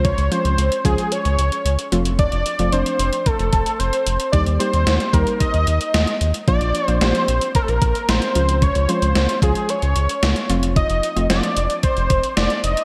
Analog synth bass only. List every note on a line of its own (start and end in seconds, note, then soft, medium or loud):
0.00 0.14 C#2 medium
0.18 0.30 C#2 loud
0.45 0.57 C#2 medium
0.58 0.70 C#2 loud
0.85 0.97 C#2 medium
1.25 1.37 C#2 loud
1.39 1.51 C#2 medium
1.65 1.77 C#2 loud
1.92 2.28 F1 loud
2.32 2.44 F1 loud
2.59 2.71 F1 loud
2.72 2.85 F1 loud
2.99 3.11 F1 loud
3.39 3.52 F1 loud
3.53 3.65 F1 medium
3.80 3.92 F1 medium
4.07 4.19 F1 medium
4.33 4.45 D#2 loud
4.47 4.59 D#2 loud
4.74 4.86 D#2 medium
4.87 4.99 D#2 loud
5.13 5.26 D#2 loud
5.54 5.66 D#2 loud
5.68 5.79 D#2 medium
5.94 6.06 D#2 medium
6.21 6.33 D#2 loud
6.48 6.60 A#1 loud
6.61 6.73 A#1 medium
6.88 7.00 A#1 medium
7.01 7.13 A#1 loud
7.28 7.40 A#1 medium
7.68 7.80 A#1 loud
7.82 7.94 A#1 loud
8.09 8.21 A#1 medium
8.36 8.72 C#2 medium
8.76 8.88 C#2 loud
9.02 9.14 C#2 medium
9.16 9.28 C#2 loud
9.42 9.54 C#2 medium
9.83 9.95 C#2 loud
9.96 10.08 C#2 medium
10.23 10.35 C#2 loud
10.49 10.86 F1 loud
10.90 11.02 F1 medium
11.16 11.28 F1 medium
11.30 11.42 F1 loud
11.57 11.69 F1 loud
11.97 12.09 F1 loud
12.10 12.22 F1 loud
12.37 12.49 F1 medium
12.64 12.76 F1 medium